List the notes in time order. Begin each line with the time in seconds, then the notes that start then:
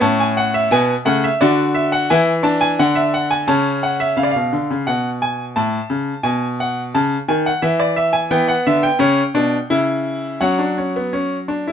0.01 A2 C#4 A5
0.20 G#5
0.37 F#5
0.54 E5
0.71 B2 B3 G#5
1.05 C#3 A3 F#5
1.24 E5
1.41 D3 F#4 D5
1.75 E5
1.92 F#5
2.10 E3 E4 G#5
2.43 D4 A5
2.61 G#5
2.79 D3 F#5
2.95 E5
3.14 F#5
3.31 G#5
3.47 C#3 C#4 A5
3.83 F#5
4.00 E5
4.17 C#3 F5
4.23 D5
4.31 F5
4.35 B2
4.53 D3
4.70 C#3
4.87 B2 F#5
5.22 G#5
5.56 A2 A5
5.90 C#3
6.23 B2 G#5
6.60 F#5
6.95 C#3 A5
7.28 D#3 G#5
7.46 F#5
7.62 E3 E5
7.80 D5
7.96 E5
8.13 G#5
8.31 E3 B3 G5
8.48 F#5
8.67 D3 E5
8.83 G5
8.99 C#3 C#4
9.34 B2 D4
9.70 C#3 E4
10.41 F#3 C#4 F#5
10.59 D4
10.78 C#4
10.96 B3
11.13 C#4
11.48 D4
11.67 E4